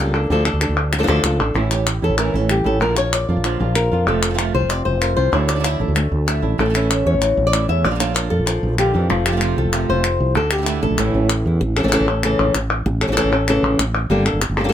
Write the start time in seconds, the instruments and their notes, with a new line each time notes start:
0.00 fretless electric bass C#2, nylon-string guitar G3 A#3 D4 A4
0.14 nylon-string guitar A#3 D4 A4
0.30 fretless electric bass D2, nylon-string guitar D3 F3 A3 D4 A4
0.45 nylon-string guitar A3 D4 A4, clap
0.53 fretless electric bass D2
0.61 nylon-string guitar A3 D4 A4, clap
0.69 fretless electric bass D2
0.92 muted nylon-string guitar stroke, clap
0.98 nylon-string guitar F3 A3 D4 A4
1.03 nylon-string guitar F3 A3 D4 A4
1.07 fretless electric bass D2, nylon-string guitar D3 F3 A3 D4 A4
1.23 fretless electric bass C#2, nylon-string guitar F3 A3 D4 F4 A4, clap
1.40 fretless electric bass A1, nylon-string guitar A3 D4 A4
1.54 fretless electric bass A1, nylon-string guitar A2 E3 A3 C#4 E4
1.71 nylon-string guitar A3 C#4 E4 G4, clap
1.86 muted nylon-string guitar stroke, clap
2.02 fretless electric bass E2, nylon-string guitar A3 C#4 E4 A4
2.10 fretless electric bass A1
2.18 nylon-string guitar E3 A3 C#4 E4 A#4, clap
2.33 fretless electric bass A1, nylon-string guitar A3 C#4 E4 A4
2.49 nylon-string guitar G2 G4, muted nylon-string guitar stroke, clap
2.64 fretless electric bass A1, nylon-string guitar A2 A3 C#4 E4 A4
2.80 fretless electric bass A#1, nylon-string guitar A#2 D3 A#3 D4 F4 A#4
2.97 nylon-string guitar A#3 D4 F4 C#5, clap
3.13 nylon-string guitar D5, muted nylon-string guitar stroke, clap
3.28 fretless electric bass F2, nylon-string guitar A#3 D4 F4
3.37 fretless electric bass A#1
3.44 nylon-string guitar D3 F3 A#3 D4 F4, clap
3.60 fretless electric bass A#1, nylon-string guitar A#3 D4 F4
3.75 nylon-string guitar A#4, muted nylon-string guitar stroke, clap
3.91 fretless electric bass F2, nylon-string guitar A#3 D4 F4
4.07 fretless electric bass F1, nylon-string guitar C3 F3 A3 C4 F4 A4
4.22 nylon-string guitar A#4, clap
4.30 nylon-string guitar F3 A3 C4 F4
4.34 nylon-string guitar F3 A3 C4 F4
4.39 nylon-string guitar C3 F3 A3 C4 F4, clap
4.54 fretless electric bass C2, nylon-string guitar A3 C4 F4 C5
4.62 fretless electric bass F1
4.69 nylon-string guitar C3 D5, muted nylon-string guitar stroke, clap
4.85 fretless electric bass F1, nylon-string guitar C5
5.01 nylon-string guitar F3 A3 C4 F4 A#4, clap
5.16 fretless electric bass C2, nylon-string guitar A3 C4 F4 C5
5.32 fretless electric bass D2, nylon-string guitar D3 A3 D4 E4 C#5
5.48 nylon-string guitar D5, clap
5.55 nylon-string guitar D3 A3 D4 E4
5.60 nylon-string guitar D3 A3 D4 E4
5.64 nylon-string guitar D3 A3 D4 E4 E5, clap
5.79 fretless electric bass A1, nylon-string guitar A3 D4 E4 A4
5.88 fretless electric bass D2
5.95 nylon-string guitar A3, muted nylon-string guitar stroke, clap
6.12 fretless electric bass D2
6.26 nylon-string guitar D3 A3 D4 E4 E5, clap
6.42 fretless electric bass A1, nylon-string guitar A3 D4 E4
6.58 fretless electric bass A1, nylon-string guitar E3 A3 C#4 E4 A4
6.65 nylon-string guitar E3 A3 C#4 E4
6.69 nylon-string guitar E3 A3 C#4 E4
6.74 nylon-string guitar E3 A3 C#4 E4, clap
6.89 nylon-string guitar A3 C#4 E4 E5, clap
7.06 fretless electric bass E2, nylon-string guitar C#5
7.14 fretless electric bass A1
7.21 nylon-string guitar E3, muted nylon-string guitar stroke, clap
7.37 fretless electric bass A1
7.47 nylon-string guitar D5
7.53 nylon-string guitar E3 A3 C#4 E4, clap
7.68 fretless electric bass E2, nylon-string guitar A3 C#4 E4 E5
7.84 fretless electric bass A#1, nylon-string guitar A#2 D3 A#3 D4 F4 D5
7.91 nylon-string guitar D3 A#3 D4 F4
7.95 nylon-string guitar D3 A#3 D4 F4
8.00 nylon-string guitar D3 A#3 D4 F4 C#5, clap
8.14 nylon-string guitar A#3 D4 F4 A#4, clap
8.30 fretless electric bass F2, nylon-string guitar A4
8.39 fretless electric bass A#1
8.46 nylon-string guitar F3 A#4, muted nylon-string guitar stroke, clap
8.63 fretless electric bass A#1
8.78 nylon-string guitar D3 A#3 D4 F4 G4, clap
8.94 fretless electric bass F2, nylon-string guitar E3 A#3 D4 F4
9.10 fretless electric bass F1, nylon-string guitar F3 A3 F4, muted nylon-string guitar stroke
9.26 nylon-string guitar F3 A3 C4 F4 G4, clap
9.32 nylon-string guitar F3 A3 C4 F4
9.36 nylon-string guitar F3 A3 C4 F4
9.41 nylon-string guitar C3 F3 A3 C4 F4, clap
9.56 fretless electric bass C2, nylon-string guitar A3 C4 F4 A4
9.65 fretless electric bass F1
9.72 nylon-string guitar C3 F3 A3 C4 F4 A#4, clap
9.89 fretless electric bass F1, nylon-string guitar C5
10.04 nylon-string guitar F4, muted nylon-string guitar stroke, clap
10.20 fretless electric bass C2
10.35 fretless electric bass D2, nylon-string guitar D3 A4, muted nylon-string guitar stroke
10.51 nylon-string guitar G4, clap
10.58 nylon-string guitar D3 A3 D4 E4
10.62 nylon-string guitar D3 A3 D4 E4
10.66 nylon-string guitar D3 A3 D4 E4, clap
10.82 fretless electric bass A1, nylon-string guitar A3 D4 E4 A4
10.91 fretless electric bass A#1
10.97 fretless electric bass A1, nylon-string guitar A2 E3 A3 C#4 E4, clap
11.14 fretless electric bass A1, nylon-string guitar C#4
11.29 nylon-string guitar E4, muted nylon-string guitar stroke, clap
11.46 fretless electric bass E2, nylon-string guitar E4
11.61 fretless electric bass A1, muted nylon-string guitar stroke
11.77 nylon-string guitar E3 A3 C#4 A4, clap
11.83 fretless electric bass A1, nylon-string guitar E3 A3 C#4 A4
11.88 nylon-string guitar E3 A3 C#4 A4
11.92 nylon-string guitar C#3 E3 A3 C#4 A4, clap
12.00 fretless electric bass A1
12.08 nylon-string guitar A3 C#4 A4
12.23 nylon-string guitar C#3 E3 A3 C#4 A4, clap
12.39 fretless electric bass A1
12.55 fretless electric bass A1, muted nylon-string guitar stroke, clap
12.86 fretless electric bass A1, muted nylon-string guitar stroke
13.01 nylon-string guitar A3 C#4 A4, clap
13.07 fretless electric bass A1, nylon-string guitar E3 A3 C#4 A4
13.12 nylon-string guitar E3 A3 C#4 A4
13.17 nylon-string guitar C#3 E3 A3 C#4 A4, clap
13.24 fretless electric bass A1
13.32 nylon-string guitar A3 C#4 A4
13.48 nylon-string guitar C#3 E3 A3 C#4 A4, clap
13.63 fretless electric bass A1
13.79 fretless electric bass A1, muted nylon-string guitar stroke, clap
14.10 fretless electric bass G1, nylon-string guitar D3 G3 A#3 D4 A4
14.25 nylon-string guitar A#3 D4 A4, clap
14.33 fretless electric bass G1
14.41 muted nylon-string guitar stroke, clap
14.49 fretless electric bass G1
14.57 nylon-string guitar G3 A#3 D4 A4
14.64 nylon-string guitar G3 A#3 D4 A4
14.69 nylon-string guitar G3 A#3 D4 A4